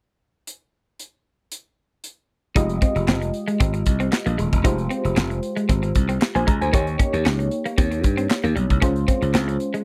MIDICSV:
0, 0, Header, 1, 6, 480
1, 0, Start_track
1, 0, Key_signature, -4, "minor"
1, 0, Tempo, 521739
1, 435, Time_signature, 4, 2, 24, 8
1, 9053, End_track
2, 0, Start_track
2, 0, Title_t, "FM electric piano"
2, 0, Program_c, 0, 5
2, 2349, Note_on_c, 0, 56, 69
2, 2355, Note_on_c, 0, 65, 62
2, 2359, Note_on_c, 0, 67, 54
2, 2364, Note_on_c, 0, 75, 76
2, 4235, Note_off_c, 0, 56, 0
2, 4238, Note_off_c, 0, 65, 0
2, 4240, Note_off_c, 0, 67, 0
2, 4243, Note_off_c, 0, 75, 0
2, 4268, Note_on_c, 0, 56, 71
2, 4273, Note_on_c, 0, 65, 65
2, 4279, Note_on_c, 0, 67, 54
2, 4284, Note_on_c, 0, 72, 71
2, 5691, Note_off_c, 0, 72, 0
2, 5843, Note_on_c, 0, 80, 70
2, 5849, Note_on_c, 0, 72, 59
2, 5950, Note_off_c, 0, 80, 0
2, 5953, Note_off_c, 0, 72, 0
2, 5956, Note_on_c, 0, 82, 68
2, 6076, Note_off_c, 0, 82, 0
2, 6085, Note_on_c, 0, 80, 67
2, 6091, Note_on_c, 0, 72, 49
2, 6155, Note_off_c, 0, 56, 0
2, 6157, Note_off_c, 0, 65, 0
2, 6160, Note_off_c, 0, 67, 0
2, 6190, Note_on_c, 0, 58, 65
2, 6194, Note_on_c, 0, 63, 63
2, 6200, Note_on_c, 0, 67, 62
2, 6204, Note_on_c, 0, 73, 76
2, 6312, Note_off_c, 0, 80, 0
2, 6315, Note_off_c, 0, 72, 0
2, 8076, Note_off_c, 0, 58, 0
2, 8078, Note_off_c, 0, 63, 0
2, 8081, Note_off_c, 0, 67, 0
2, 8083, Note_off_c, 0, 73, 0
2, 8111, Note_on_c, 0, 56, 72
2, 8116, Note_on_c, 0, 61, 66
2, 8120, Note_on_c, 0, 65, 68
2, 8125, Note_on_c, 0, 72, 70
2, 9053, Note_off_c, 0, 56, 0
2, 9053, Note_off_c, 0, 61, 0
2, 9053, Note_off_c, 0, 65, 0
2, 9053, Note_off_c, 0, 72, 0
2, 9053, End_track
3, 0, Start_track
3, 0, Title_t, "Clean electric guitar"
3, 0, Program_c, 1, 27
3, 2354, Note_on_c, 1, 63, 76
3, 2456, Note_off_c, 1, 63, 0
3, 2596, Note_on_c, 1, 60, 83
3, 2697, Note_off_c, 1, 60, 0
3, 2835, Note_on_c, 1, 60, 78
3, 2937, Note_off_c, 1, 60, 0
3, 3197, Note_on_c, 1, 56, 74
3, 3290, Note_off_c, 1, 56, 0
3, 3311, Note_on_c, 1, 60, 73
3, 3414, Note_off_c, 1, 60, 0
3, 3680, Note_on_c, 1, 60, 70
3, 3771, Note_off_c, 1, 60, 0
3, 3918, Note_on_c, 1, 58, 67
3, 4010, Note_off_c, 1, 58, 0
3, 4031, Note_on_c, 1, 56, 61
3, 4134, Note_off_c, 1, 56, 0
3, 4272, Note_on_c, 1, 63, 78
3, 4375, Note_off_c, 1, 63, 0
3, 4512, Note_on_c, 1, 60, 91
3, 4615, Note_off_c, 1, 60, 0
3, 4752, Note_on_c, 1, 60, 75
3, 4855, Note_off_c, 1, 60, 0
3, 5120, Note_on_c, 1, 56, 71
3, 5211, Note_off_c, 1, 56, 0
3, 5233, Note_on_c, 1, 60, 76
3, 5335, Note_off_c, 1, 60, 0
3, 5601, Note_on_c, 1, 60, 73
3, 5692, Note_off_c, 1, 60, 0
3, 5842, Note_on_c, 1, 58, 74
3, 5933, Note_off_c, 1, 58, 0
3, 5952, Note_on_c, 1, 56, 65
3, 6055, Note_off_c, 1, 56, 0
3, 6192, Note_on_c, 1, 63, 70
3, 6295, Note_off_c, 1, 63, 0
3, 6434, Note_on_c, 1, 61, 89
3, 6536, Note_off_c, 1, 61, 0
3, 6673, Note_on_c, 1, 61, 82
3, 6775, Note_off_c, 1, 61, 0
3, 7043, Note_on_c, 1, 58, 70
3, 7133, Note_off_c, 1, 58, 0
3, 7154, Note_on_c, 1, 60, 77
3, 7256, Note_off_c, 1, 60, 0
3, 7520, Note_on_c, 1, 60, 70
3, 7611, Note_off_c, 1, 60, 0
3, 7761, Note_on_c, 1, 58, 71
3, 7852, Note_off_c, 1, 58, 0
3, 7872, Note_on_c, 1, 55, 67
3, 7975, Note_off_c, 1, 55, 0
3, 8111, Note_on_c, 1, 61, 79
3, 8214, Note_off_c, 1, 61, 0
3, 8353, Note_on_c, 1, 60, 89
3, 8456, Note_off_c, 1, 60, 0
3, 8592, Note_on_c, 1, 60, 71
3, 8695, Note_off_c, 1, 60, 0
3, 8960, Note_on_c, 1, 56, 74
3, 9051, Note_off_c, 1, 56, 0
3, 9053, End_track
4, 0, Start_track
4, 0, Title_t, "Slap bass"
4, 0, Program_c, 2, 36
4, 2353, Note_on_c, 2, 29, 90
4, 2556, Note_off_c, 2, 29, 0
4, 2720, Note_on_c, 2, 29, 81
4, 2816, Note_off_c, 2, 29, 0
4, 2833, Note_on_c, 2, 29, 80
4, 3036, Note_off_c, 2, 29, 0
4, 3317, Note_on_c, 2, 32, 85
4, 3518, Note_off_c, 2, 32, 0
4, 3557, Note_on_c, 2, 36, 75
4, 3758, Note_off_c, 2, 36, 0
4, 3922, Note_on_c, 2, 34, 79
4, 4017, Note_off_c, 2, 34, 0
4, 4036, Note_on_c, 2, 27, 79
4, 4143, Note_off_c, 2, 27, 0
4, 4165, Note_on_c, 2, 28, 78
4, 4259, Note_off_c, 2, 28, 0
4, 4276, Note_on_c, 2, 29, 99
4, 4478, Note_off_c, 2, 29, 0
4, 4643, Note_on_c, 2, 29, 80
4, 4738, Note_off_c, 2, 29, 0
4, 4756, Note_on_c, 2, 29, 78
4, 4958, Note_off_c, 2, 29, 0
4, 5237, Note_on_c, 2, 32, 88
4, 5439, Note_off_c, 2, 32, 0
4, 5479, Note_on_c, 2, 36, 78
4, 5680, Note_off_c, 2, 36, 0
4, 5844, Note_on_c, 2, 34, 86
4, 5939, Note_off_c, 2, 34, 0
4, 5959, Note_on_c, 2, 37, 79
4, 6065, Note_off_c, 2, 37, 0
4, 6083, Note_on_c, 2, 38, 72
4, 6178, Note_off_c, 2, 38, 0
4, 6197, Note_on_c, 2, 39, 97
4, 6399, Note_off_c, 2, 39, 0
4, 6564, Note_on_c, 2, 39, 87
4, 6659, Note_off_c, 2, 39, 0
4, 6677, Note_on_c, 2, 37, 84
4, 6879, Note_off_c, 2, 37, 0
4, 7158, Note_on_c, 2, 39, 90
4, 7399, Note_off_c, 2, 39, 0
4, 7399, Note_on_c, 2, 43, 83
4, 7600, Note_off_c, 2, 43, 0
4, 7762, Note_on_c, 2, 39, 85
4, 7857, Note_off_c, 2, 39, 0
4, 7877, Note_on_c, 2, 35, 68
4, 7984, Note_off_c, 2, 35, 0
4, 8007, Note_on_c, 2, 36, 76
4, 8100, Note_off_c, 2, 36, 0
4, 8118, Note_on_c, 2, 37, 98
4, 8319, Note_off_c, 2, 37, 0
4, 8484, Note_on_c, 2, 37, 88
4, 8579, Note_off_c, 2, 37, 0
4, 8596, Note_on_c, 2, 37, 80
4, 8798, Note_off_c, 2, 37, 0
4, 9053, End_track
5, 0, Start_track
5, 0, Title_t, "Muted clean electric guitar strokes"
5, 2722, Note_on_c, 9, 29, 48
5, 2814, Note_off_c, 9, 29, 0
5, 2958, Note_on_c, 9, 29, 47
5, 3050, Note_off_c, 9, 29, 0
5, 3438, Note_on_c, 9, 29, 40
5, 3530, Note_off_c, 9, 29, 0
5, 3793, Note_on_c, 9, 29, 46
5, 3885, Note_off_c, 9, 29, 0
5, 4642, Note_on_c, 9, 29, 44
5, 4734, Note_off_c, 9, 29, 0
5, 4879, Note_on_c, 9, 29, 43
5, 4971, Note_off_c, 9, 29, 0
5, 5361, Note_on_c, 9, 29, 42
5, 5453, Note_off_c, 9, 29, 0
5, 5715, Note_on_c, 9, 29, 51
5, 5807, Note_off_c, 9, 29, 0
5, 6563, Note_on_c, 9, 29, 44
5, 6655, Note_off_c, 9, 29, 0
5, 6799, Note_on_c, 9, 29, 45
5, 6891, Note_off_c, 9, 29, 0
5, 7281, Note_on_c, 9, 29, 39
5, 7373, Note_off_c, 9, 29, 0
5, 7635, Note_on_c, 9, 29, 45
5, 7727, Note_off_c, 9, 29, 0
5, 8480, Note_on_c, 9, 29, 45
5, 8572, Note_off_c, 9, 29, 0
5, 8721, Note_on_c, 9, 29, 46
5, 8813, Note_off_c, 9, 29, 0
5, 9053, End_track
6, 0, Start_track
6, 0, Title_t, "Drums"
6, 436, Note_on_c, 9, 42, 56
6, 528, Note_off_c, 9, 42, 0
6, 915, Note_on_c, 9, 42, 54
6, 1007, Note_off_c, 9, 42, 0
6, 1395, Note_on_c, 9, 42, 58
6, 1487, Note_off_c, 9, 42, 0
6, 1875, Note_on_c, 9, 42, 49
6, 1967, Note_off_c, 9, 42, 0
6, 2353, Note_on_c, 9, 42, 104
6, 2354, Note_on_c, 9, 36, 113
6, 2445, Note_off_c, 9, 42, 0
6, 2446, Note_off_c, 9, 36, 0
6, 2478, Note_on_c, 9, 42, 50
6, 2570, Note_off_c, 9, 42, 0
6, 2592, Note_on_c, 9, 42, 62
6, 2593, Note_on_c, 9, 36, 96
6, 2684, Note_off_c, 9, 42, 0
6, 2685, Note_off_c, 9, 36, 0
6, 2723, Note_on_c, 9, 42, 50
6, 2815, Note_off_c, 9, 42, 0
6, 2836, Note_on_c, 9, 39, 84
6, 2840, Note_on_c, 9, 38, 104
6, 2928, Note_off_c, 9, 39, 0
6, 2932, Note_off_c, 9, 38, 0
6, 2963, Note_on_c, 9, 42, 51
6, 3055, Note_off_c, 9, 42, 0
6, 3070, Note_on_c, 9, 42, 74
6, 3162, Note_off_c, 9, 42, 0
6, 3201, Note_on_c, 9, 42, 52
6, 3293, Note_off_c, 9, 42, 0
6, 3314, Note_on_c, 9, 42, 85
6, 3317, Note_on_c, 9, 36, 117
6, 3406, Note_off_c, 9, 42, 0
6, 3409, Note_off_c, 9, 36, 0
6, 3439, Note_on_c, 9, 42, 54
6, 3531, Note_off_c, 9, 42, 0
6, 3548, Note_on_c, 9, 42, 93
6, 3557, Note_on_c, 9, 36, 88
6, 3640, Note_off_c, 9, 42, 0
6, 3649, Note_off_c, 9, 36, 0
6, 3680, Note_on_c, 9, 42, 50
6, 3772, Note_off_c, 9, 42, 0
6, 3797, Note_on_c, 9, 39, 84
6, 3800, Note_on_c, 9, 38, 96
6, 3889, Note_off_c, 9, 39, 0
6, 3892, Note_off_c, 9, 38, 0
6, 3924, Note_on_c, 9, 42, 55
6, 4016, Note_off_c, 9, 42, 0
6, 4036, Note_on_c, 9, 42, 73
6, 4128, Note_off_c, 9, 42, 0
6, 4165, Note_on_c, 9, 42, 46
6, 4166, Note_on_c, 9, 36, 80
6, 4257, Note_off_c, 9, 42, 0
6, 4258, Note_off_c, 9, 36, 0
6, 4275, Note_on_c, 9, 42, 104
6, 4276, Note_on_c, 9, 36, 120
6, 4367, Note_off_c, 9, 42, 0
6, 4368, Note_off_c, 9, 36, 0
6, 4401, Note_on_c, 9, 42, 43
6, 4493, Note_off_c, 9, 42, 0
6, 4514, Note_on_c, 9, 42, 71
6, 4606, Note_off_c, 9, 42, 0
6, 4645, Note_on_c, 9, 42, 54
6, 4737, Note_off_c, 9, 42, 0
6, 4758, Note_on_c, 9, 39, 88
6, 4762, Note_on_c, 9, 38, 118
6, 4850, Note_off_c, 9, 39, 0
6, 4854, Note_off_c, 9, 38, 0
6, 4886, Note_on_c, 9, 42, 45
6, 4978, Note_off_c, 9, 42, 0
6, 4993, Note_on_c, 9, 42, 83
6, 5085, Note_off_c, 9, 42, 0
6, 5125, Note_on_c, 9, 42, 57
6, 5217, Note_off_c, 9, 42, 0
6, 5237, Note_on_c, 9, 42, 87
6, 5239, Note_on_c, 9, 36, 105
6, 5329, Note_off_c, 9, 42, 0
6, 5331, Note_off_c, 9, 36, 0
6, 5365, Note_on_c, 9, 42, 51
6, 5457, Note_off_c, 9, 42, 0
6, 5473, Note_on_c, 9, 42, 87
6, 5479, Note_on_c, 9, 36, 92
6, 5565, Note_off_c, 9, 42, 0
6, 5571, Note_off_c, 9, 36, 0
6, 5604, Note_on_c, 9, 42, 54
6, 5696, Note_off_c, 9, 42, 0
6, 5720, Note_on_c, 9, 39, 89
6, 5724, Note_on_c, 9, 38, 111
6, 5812, Note_off_c, 9, 39, 0
6, 5816, Note_off_c, 9, 38, 0
6, 5847, Note_on_c, 9, 42, 60
6, 5939, Note_off_c, 9, 42, 0
6, 5959, Note_on_c, 9, 36, 105
6, 5961, Note_on_c, 9, 42, 63
6, 6051, Note_off_c, 9, 36, 0
6, 6053, Note_off_c, 9, 42, 0
6, 6088, Note_on_c, 9, 42, 47
6, 6180, Note_off_c, 9, 42, 0
6, 6197, Note_on_c, 9, 36, 108
6, 6197, Note_on_c, 9, 42, 98
6, 6289, Note_off_c, 9, 36, 0
6, 6289, Note_off_c, 9, 42, 0
6, 6322, Note_on_c, 9, 42, 45
6, 6414, Note_off_c, 9, 42, 0
6, 6436, Note_on_c, 9, 36, 97
6, 6436, Note_on_c, 9, 42, 69
6, 6528, Note_off_c, 9, 36, 0
6, 6528, Note_off_c, 9, 42, 0
6, 6566, Note_on_c, 9, 42, 48
6, 6658, Note_off_c, 9, 42, 0
6, 6680, Note_on_c, 9, 39, 79
6, 6684, Note_on_c, 9, 38, 118
6, 6772, Note_off_c, 9, 39, 0
6, 6776, Note_off_c, 9, 38, 0
6, 6807, Note_on_c, 9, 42, 54
6, 6899, Note_off_c, 9, 42, 0
6, 6913, Note_on_c, 9, 42, 76
6, 7005, Note_off_c, 9, 42, 0
6, 7044, Note_on_c, 9, 42, 52
6, 7136, Note_off_c, 9, 42, 0
6, 7157, Note_on_c, 9, 42, 86
6, 7159, Note_on_c, 9, 36, 107
6, 7249, Note_off_c, 9, 42, 0
6, 7251, Note_off_c, 9, 36, 0
6, 7283, Note_on_c, 9, 42, 57
6, 7375, Note_off_c, 9, 42, 0
6, 7393, Note_on_c, 9, 42, 93
6, 7399, Note_on_c, 9, 36, 88
6, 7485, Note_off_c, 9, 42, 0
6, 7491, Note_off_c, 9, 36, 0
6, 7524, Note_on_c, 9, 42, 50
6, 7616, Note_off_c, 9, 42, 0
6, 7641, Note_on_c, 9, 39, 89
6, 7644, Note_on_c, 9, 38, 101
6, 7733, Note_off_c, 9, 39, 0
6, 7736, Note_off_c, 9, 38, 0
6, 7767, Note_on_c, 9, 42, 53
6, 7859, Note_off_c, 9, 42, 0
6, 7880, Note_on_c, 9, 42, 62
6, 7972, Note_off_c, 9, 42, 0
6, 8007, Note_on_c, 9, 36, 76
6, 8007, Note_on_c, 9, 42, 46
6, 8099, Note_off_c, 9, 36, 0
6, 8099, Note_off_c, 9, 42, 0
6, 8117, Note_on_c, 9, 36, 110
6, 8118, Note_on_c, 9, 42, 95
6, 8209, Note_off_c, 9, 36, 0
6, 8210, Note_off_c, 9, 42, 0
6, 8242, Note_on_c, 9, 42, 43
6, 8334, Note_off_c, 9, 42, 0
6, 8356, Note_on_c, 9, 36, 90
6, 8356, Note_on_c, 9, 42, 69
6, 8448, Note_off_c, 9, 36, 0
6, 8448, Note_off_c, 9, 42, 0
6, 8486, Note_on_c, 9, 42, 50
6, 8578, Note_off_c, 9, 42, 0
6, 8598, Note_on_c, 9, 39, 85
6, 8602, Note_on_c, 9, 38, 118
6, 8690, Note_off_c, 9, 39, 0
6, 8694, Note_off_c, 9, 38, 0
6, 8727, Note_on_c, 9, 42, 53
6, 8819, Note_off_c, 9, 42, 0
6, 8832, Note_on_c, 9, 42, 75
6, 8924, Note_off_c, 9, 42, 0
6, 8964, Note_on_c, 9, 42, 56
6, 9053, Note_off_c, 9, 42, 0
6, 9053, End_track
0, 0, End_of_file